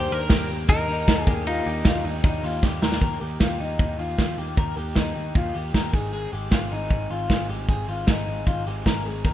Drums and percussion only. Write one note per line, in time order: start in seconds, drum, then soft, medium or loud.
0.11 open hi-hat medium
0.11 tambourine medium
0.29 kick loud
0.29 snare loud
0.29 hi-hat pedal medium
0.29 ride medium
0.29 tambourine medium
0.49 open hi-hat medium
0.49 tambourine medium
0.69 kick loud
0.69 hi-hat pedal medium
0.69 ride medium
0.69 tambourine medium
0.88 open hi-hat medium
0.88 tambourine soft
1.07 kick medium
1.07 snare loud
1.07 hi-hat pedal medium
1.07 ride medium
1.07 tambourine medium
1.27 kick loud
1.27 open hi-hat medium
1.27 tambourine soft
1.46 hi-hat pedal medium
1.46 ride medium
1.46 tambourine soft
1.66 open hi-hat medium
1.66 tambourine medium
1.85 kick loud
1.85 snare loud
1.85 hi-hat pedal medium
1.85 ride medium
1.85 tambourine medium
2.04 open hi-hat medium
2.04 tambourine medium
2.24 kick loud
2.24 hi-hat pedal medium
2.24 ride medium
2.24 tambourine medium
2.43 open hi-hat medium
2.43 tambourine medium
2.63 kick loud
2.63 snare medium
2.63 tambourine medium
2.82 snare loud
2.82 tambourine soft
2.92 snare loud
3.01 kick loud
3.01 closed hi-hat medium
3.21 open hi-hat medium
3.40 kick medium
3.40 snare loud
3.40 closed hi-hat medium
3.60 open hi-hat medium
3.79 kick loud
3.79 closed hi-hat medium
3.99 open hi-hat medium
4.18 kick medium
4.18 snare medium
4.18 closed hi-hat medium
4.38 open hi-hat medium
4.57 kick loud
4.57 closed hi-hat medium
4.77 open hi-hat medium
4.96 kick medium
4.96 snare loud
4.96 closed hi-hat medium
5.16 open hi-hat medium
5.35 kick loud
5.35 closed hi-hat medium
5.55 open hi-hat medium
5.74 kick medium
5.74 snare medium
5.74 closed hi-hat medium
5.93 kick loud
5.93 open hi-hat medium
6.13 closed hi-hat medium
6.32 open hi-hat medium
6.51 kick medium
6.51 snare loud
6.51 closed hi-hat medium
6.71 open hi-hat medium
6.90 kick loud
6.90 closed hi-hat medium
7.10 open hi-hat medium
7.30 kick medium
7.30 snare medium
7.30 closed hi-hat medium
7.49 open hi-hat medium
7.68 kick loud
7.68 closed hi-hat medium
7.89 open hi-hat medium
8.07 kick loud
8.07 snare loud
8.07 closed hi-hat medium
8.27 open hi-hat medium
8.47 kick loud
8.47 closed hi-hat medium
8.67 open hi-hat medium
8.86 kick medium
8.86 snare loud
8.86 closed hi-hat medium
9.06 open hi-hat medium
9.25 kick loud
9.25 closed hi-hat medium